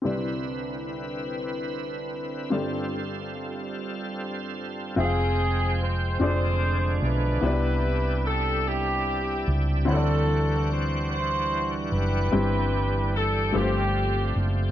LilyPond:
<<
  \new Staff \with { instrumentName = "Horn section" } { \time 6/8 \key c \major \tempo 4. = 49 << { r2. | r2. | aes'4 c''8 c''4 b'8~ | b'4 a'8 g'4 r8 |
a'4 c''8 c''4 b'8~ | b'4 a'8 g'4 r8 | } \\ { r2. | r2. | c'4. aes'4 <d' e'>8~ | <d' e'>4 r8 <b e'>4. |
<c' fis'>4. <e' fis'>4 <e' g'>8~ | <e' g'>4 r8 <c' d'>4. | } >> }
  \new Staff \with { instrumentName = "French horn section" } { \time 6/8 \key c \major << { <d' e' b'>2. | <f' g' a'>2. | r2. | r2. |
r2. | r2. | } \\ { c'2.~ | c'2. | r2. | r2. |
r2. | r2. | } >> }
  \new Staff \with { instrumentName = "Upright piano" } { \time 6/8 \key c \major <c' e' g' b' d''>2. | <c' f' g' a' d''>2. | <c' f' aes' e'' f'' g''>4. <f c' d' aes' d''>4. | <b e' g' b' d''>2. |
<c' e' des'' d'' fis'' b''>2. | <c' e' g'>4. <a d' f' g' b' c''>4. | }
  \new Staff \with { instrumentName = "Upright piano" } { \clef bass \time 6/8 \key c \major <c, c>2. | <g,, g,>2. | r2. | c4. r4. |
d4. r4. | g,4. g4. | }
  \new Staff \with { instrumentName = "Tonewheel organ" } { \time 6/8 \key c \major << { b'2. | a'2. | g''4. f4. | e'2. |
fis''2. | g'2. | } \\ { e'2. | f'2. | c'4. d'4.~ | d'2.~ |
d'2.~ | d'4. c'4. | } >> }
  \new Staff \with { instrumentName = "Tonewheel organ" } { \clef bass \time 6/8 \key c \major << { c'2.~ | c'2. | aes2. | g2.~ |
g2. | g4. a4. | } \\ { d2. | g2. | f4. d4. | c2. |
e2.~ | e4. f4. | } >> }
  \new Staff \with { instrumentName = "Fingered electric bass" } { \clef bass \time 6/8 \key c \major r2. | r2. | f,,4. f,,4 b,,8 | c,2~ c,8 des,8 |
d,2~ d,8 fis,,8 | g,,4. g,,4 fis,,8 | }
>>